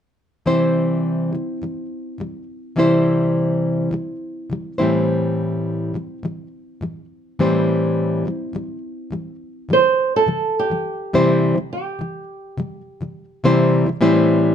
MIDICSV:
0, 0, Header, 1, 3, 480
1, 0, Start_track
1, 0, Key_signature, 0, "major"
1, 0, Tempo, 576923
1, 384, Time_signature, 4, 2, 24, 8
1, 12105, End_track
2, 0, Start_track
2, 0, Title_t, "Nylon-string guitar"
2, 0, Program_c, 0, 24
2, 8096, Note_on_c, 0, 72, 90
2, 8450, Note_off_c, 0, 72, 0
2, 8456, Note_on_c, 0, 69, 80
2, 8810, Note_off_c, 0, 69, 0
2, 8815, Note_on_c, 0, 67, 76
2, 9746, Note_off_c, 0, 67, 0
2, 9756, Note_on_c, 0, 67, 59
2, 11632, Note_off_c, 0, 67, 0
2, 12105, End_track
3, 0, Start_track
3, 0, Title_t, "Nylon-string guitar"
3, 0, Program_c, 1, 24
3, 379, Note_on_c, 1, 48, 49
3, 382, Note_on_c, 1, 52, 57
3, 384, Note_on_c, 1, 55, 53
3, 388, Note_on_c, 1, 60, 61
3, 390, Note_on_c, 1, 64, 58
3, 392, Note_on_c, 1, 72, 66
3, 1094, Note_off_c, 1, 48, 0
3, 1104, Note_on_c, 1, 48, 42
3, 1117, Note_off_c, 1, 52, 0
3, 1120, Note_on_c, 1, 52, 46
3, 1122, Note_off_c, 1, 55, 0
3, 1126, Note_on_c, 1, 55, 49
3, 1297, Note_off_c, 1, 48, 0
3, 1305, Note_off_c, 1, 52, 0
3, 1307, Note_off_c, 1, 55, 0
3, 1345, Note_on_c, 1, 48, 53
3, 1355, Note_on_c, 1, 52, 57
3, 1364, Note_on_c, 1, 55, 58
3, 1537, Note_off_c, 1, 48, 0
3, 1542, Note_off_c, 1, 52, 0
3, 1547, Note_off_c, 1, 55, 0
3, 1815, Note_on_c, 1, 48, 46
3, 1832, Note_on_c, 1, 52, 55
3, 1841, Note_on_c, 1, 55, 54
3, 2013, Note_off_c, 1, 48, 0
3, 2021, Note_off_c, 1, 52, 0
3, 2025, Note_off_c, 1, 55, 0
3, 2295, Note_on_c, 1, 48, 55
3, 2300, Note_on_c, 1, 52, 61
3, 2307, Note_on_c, 1, 55, 56
3, 2311, Note_off_c, 1, 60, 0
3, 2315, Note_off_c, 1, 64, 0
3, 2315, Note_on_c, 1, 60, 66
3, 2318, Note_on_c, 1, 64, 62
3, 2321, Note_off_c, 1, 72, 0
3, 2325, Note_on_c, 1, 72, 65
3, 3244, Note_off_c, 1, 48, 0
3, 3254, Note_on_c, 1, 48, 57
3, 3264, Note_off_c, 1, 52, 0
3, 3267, Note_on_c, 1, 52, 56
3, 3274, Note_off_c, 1, 55, 0
3, 3277, Note_on_c, 1, 55, 57
3, 3453, Note_off_c, 1, 48, 0
3, 3459, Note_off_c, 1, 52, 0
3, 3464, Note_off_c, 1, 55, 0
3, 3742, Note_on_c, 1, 48, 48
3, 3755, Note_on_c, 1, 52, 55
3, 3767, Note_on_c, 1, 55, 57
3, 3936, Note_off_c, 1, 48, 0
3, 3943, Note_off_c, 1, 52, 0
3, 3949, Note_off_c, 1, 55, 0
3, 3976, Note_off_c, 1, 72, 0
3, 3979, Note_on_c, 1, 72, 62
3, 3983, Note_off_c, 1, 64, 0
3, 3987, Note_off_c, 1, 60, 0
3, 3987, Note_on_c, 1, 64, 55
3, 3990, Note_on_c, 1, 60, 50
3, 4001, Note_on_c, 1, 55, 45
3, 4005, Note_on_c, 1, 52, 46
3, 4012, Note_on_c, 1, 45, 47
3, 4934, Note_off_c, 1, 45, 0
3, 4944, Note_on_c, 1, 45, 44
3, 4950, Note_off_c, 1, 52, 0
3, 4953, Note_on_c, 1, 52, 47
3, 4957, Note_off_c, 1, 55, 0
3, 4961, Note_on_c, 1, 55, 54
3, 5137, Note_off_c, 1, 45, 0
3, 5142, Note_off_c, 1, 52, 0
3, 5146, Note_off_c, 1, 55, 0
3, 5184, Note_on_c, 1, 45, 56
3, 5199, Note_on_c, 1, 52, 56
3, 5204, Note_on_c, 1, 55, 62
3, 5378, Note_off_c, 1, 45, 0
3, 5385, Note_off_c, 1, 52, 0
3, 5388, Note_off_c, 1, 55, 0
3, 5666, Note_on_c, 1, 45, 52
3, 5678, Note_on_c, 1, 52, 53
3, 5686, Note_on_c, 1, 55, 62
3, 5858, Note_off_c, 1, 45, 0
3, 5864, Note_off_c, 1, 52, 0
3, 5868, Note_off_c, 1, 55, 0
3, 6151, Note_on_c, 1, 45, 54
3, 6152, Note_on_c, 1, 52, 57
3, 6158, Note_on_c, 1, 55, 67
3, 6159, Note_off_c, 1, 60, 0
3, 6160, Note_off_c, 1, 64, 0
3, 6162, Note_on_c, 1, 60, 59
3, 6163, Note_on_c, 1, 64, 66
3, 6165, Note_off_c, 1, 72, 0
3, 6169, Note_on_c, 1, 72, 60
3, 6857, Note_off_c, 1, 45, 0
3, 6867, Note_on_c, 1, 45, 46
3, 6878, Note_off_c, 1, 52, 0
3, 6881, Note_on_c, 1, 52, 48
3, 6886, Note_off_c, 1, 55, 0
3, 6889, Note_on_c, 1, 55, 54
3, 7059, Note_off_c, 1, 45, 0
3, 7065, Note_off_c, 1, 52, 0
3, 7069, Note_off_c, 1, 55, 0
3, 7098, Note_on_c, 1, 45, 55
3, 7112, Note_on_c, 1, 52, 60
3, 7122, Note_on_c, 1, 55, 60
3, 7294, Note_off_c, 1, 45, 0
3, 7301, Note_off_c, 1, 52, 0
3, 7306, Note_off_c, 1, 55, 0
3, 7576, Note_on_c, 1, 45, 49
3, 7589, Note_on_c, 1, 52, 49
3, 7598, Note_on_c, 1, 55, 56
3, 7773, Note_off_c, 1, 45, 0
3, 7779, Note_off_c, 1, 52, 0
3, 7784, Note_off_c, 1, 55, 0
3, 8060, Note_on_c, 1, 48, 45
3, 8071, Note_on_c, 1, 52, 53
3, 8078, Note_on_c, 1, 55, 53
3, 8254, Note_off_c, 1, 48, 0
3, 8260, Note_off_c, 1, 52, 0
3, 8264, Note_off_c, 1, 55, 0
3, 8540, Note_on_c, 1, 48, 54
3, 8550, Note_on_c, 1, 52, 53
3, 8557, Note_on_c, 1, 55, 59
3, 8734, Note_off_c, 1, 48, 0
3, 8739, Note_off_c, 1, 52, 0
3, 8742, Note_off_c, 1, 55, 0
3, 8903, Note_on_c, 1, 48, 45
3, 8914, Note_on_c, 1, 52, 43
3, 8922, Note_on_c, 1, 55, 47
3, 9074, Note_off_c, 1, 60, 0
3, 9075, Note_off_c, 1, 64, 0
3, 9081, Note_off_c, 1, 72, 0
3, 9095, Note_off_c, 1, 48, 0
3, 9101, Note_off_c, 1, 52, 0
3, 9104, Note_off_c, 1, 55, 0
3, 9264, Note_on_c, 1, 48, 67
3, 9267, Note_on_c, 1, 52, 66
3, 9268, Note_on_c, 1, 55, 70
3, 9273, Note_on_c, 1, 60, 67
3, 9276, Note_on_c, 1, 64, 65
3, 9276, Note_on_c, 1, 72, 70
3, 9605, Note_off_c, 1, 48, 0
3, 9615, Note_on_c, 1, 48, 42
3, 9620, Note_off_c, 1, 52, 0
3, 9625, Note_off_c, 1, 55, 0
3, 9628, Note_off_c, 1, 60, 0
3, 9629, Note_off_c, 1, 64, 0
3, 9629, Note_off_c, 1, 72, 0
3, 9630, Note_on_c, 1, 52, 45
3, 9635, Note_on_c, 1, 55, 47
3, 9811, Note_off_c, 1, 48, 0
3, 9818, Note_off_c, 1, 52, 0
3, 9821, Note_off_c, 1, 55, 0
3, 9975, Note_on_c, 1, 48, 45
3, 9992, Note_on_c, 1, 52, 47
3, 9996, Note_on_c, 1, 55, 49
3, 10170, Note_off_c, 1, 48, 0
3, 10179, Note_off_c, 1, 52, 0
3, 10181, Note_off_c, 1, 55, 0
3, 10462, Note_on_c, 1, 48, 58
3, 10469, Note_on_c, 1, 52, 62
3, 10481, Note_on_c, 1, 55, 61
3, 10653, Note_off_c, 1, 48, 0
3, 10657, Note_off_c, 1, 52, 0
3, 10663, Note_off_c, 1, 55, 0
3, 10821, Note_on_c, 1, 48, 49
3, 10830, Note_on_c, 1, 52, 49
3, 10840, Note_on_c, 1, 55, 52
3, 11013, Note_off_c, 1, 48, 0
3, 11017, Note_off_c, 1, 52, 0
3, 11022, Note_off_c, 1, 55, 0
3, 11180, Note_on_c, 1, 48, 78
3, 11182, Note_on_c, 1, 52, 73
3, 11187, Note_on_c, 1, 55, 66
3, 11190, Note_on_c, 1, 60, 81
3, 11194, Note_on_c, 1, 64, 79
3, 11194, Note_on_c, 1, 72, 76
3, 11525, Note_off_c, 1, 48, 0
3, 11535, Note_on_c, 1, 48, 51
3, 11537, Note_off_c, 1, 52, 0
3, 11543, Note_off_c, 1, 55, 0
3, 11544, Note_off_c, 1, 60, 0
3, 11546, Note_off_c, 1, 64, 0
3, 11546, Note_off_c, 1, 72, 0
3, 11547, Note_on_c, 1, 52, 57
3, 11558, Note_on_c, 1, 55, 55
3, 11648, Note_off_c, 1, 52, 0
3, 11648, Note_off_c, 1, 55, 0
3, 11650, Note_off_c, 1, 48, 0
3, 11653, Note_on_c, 1, 45, 78
3, 11658, Note_on_c, 1, 52, 75
3, 11658, Note_on_c, 1, 55, 73
3, 11661, Note_on_c, 1, 60, 76
3, 11665, Note_on_c, 1, 64, 82
3, 11668, Note_on_c, 1, 72, 84
3, 12105, Note_off_c, 1, 45, 0
3, 12105, Note_off_c, 1, 52, 0
3, 12105, Note_off_c, 1, 55, 0
3, 12105, Note_off_c, 1, 60, 0
3, 12105, Note_off_c, 1, 64, 0
3, 12105, Note_off_c, 1, 72, 0
3, 12105, End_track
0, 0, End_of_file